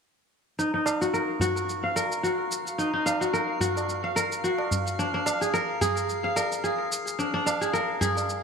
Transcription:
0.58 D#4 F5, shaker
0.74 D#4
0.86 F5, tabla na, shaker
1.01 F#4, tabla tin, shaker
1.14 A#4, shaker
1.40 F#4, tabla ge, shaker
1.57 shaker
1.69 shaker
1.84 F5
1.96 A#4, tabla na, shaker
2.12 shaker
2.23 F#4, shaker
2.51 shaker
2.67 shaker
2.78 D#4, shaker
2.93 D#4
3.06 F5, tabla na, shaker
3.21 F#4, shaker
3.33 A#4, shaker
3.61 F#4, tabla tin, tabla ge, shaker
3.77 tabla na, shaker
3.89 shaker
4.04 F5
4.16 A#4, tabla tin, shaker
4.32 shaker
4.44 F#4, shaker
4.59 tabla na
4.71 tabla ge, shaker
4.87 shaker
4.99 D4, shaker
5.14 D4
5.26 F5, tabla na, shaker
5.41 G#4, tabla tin, shaker
5.54 A#4, shaker
5.81 G#4, tabla ge, shaker
5.97 shaker
6.09 shaker
6.24 F5
6.36 A#4, tabla na, shaker
6.52 shaker
6.64 G#4, shaker
6.92 shaker
7.07 shaker
7.19 D4, shaker
7.34 D4
7.46 F5, tabla na, shaker
7.61 G#4, shaker
7.73 A#4, shaker
8.01 G#4, tabla tin, tabla ge, shaker
8.17 tabla na, shaker
8.29 shaker

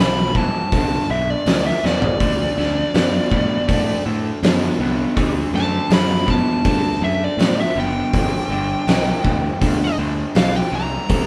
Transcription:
Already playing: B1 G2 E3
0.01 B5
0.35 G2 E3 A5, kick
0.72 C2 G2 D3, kick, open hi-hat
1.10 B1 G2 D3 E5
1.30 D5
1.46 D2 G2 E3, snare, open hi-hat
1.66 E5
1.83 E2 G2 E3 D5, snare
2.02 floor tom
2.20 D2 D3 A3, kick, open hi-hat
2.57 D2 D3 A3, snare
2.94 F#2 D3 B3, snare, open hi-hat
3.31 A2 D3 B3, kick
3.68 A2 D3 A3, kick, open hi-hat
4.06 A2 D3 A3
4.43 F#2 D3 B3, snare, open hi-hat
4.79 C2 D3 B3
5.16 D2 D3 A3, kick, open hi-hat
5.53 F#2 D3 A3 A5, snare
5.89 F#2 D3 B3, snare, open hi-hat
5.94 B5
6.26 D3 B3 A5, kick
6.65 G2 D3 A3, kick, open hi-hat
7.01 F#2 D3 A3 E5
7.24 D5
7.37 A2 D3 B3, snare, open hi-hat
7.60 E5
7.75 F#1 D3 B3
7.80 G5
8.14 G1 G2 D3, kick, open hi-hat
8.49 G1 G2 D3
8.87 B1 G2 E3, snare, open hi-hat
9.23 D2 G2 E3, kick
9.61 D2 G2 D3, kick, open hi-hat
9.98 D2 G2 D3
10.35 B1 G2 E3 F5, snare, open hi-hat
10.56 G5
10.72 C2 G2 E3 A#5
11.09 D2 D3 A3, kick, open hi-hat

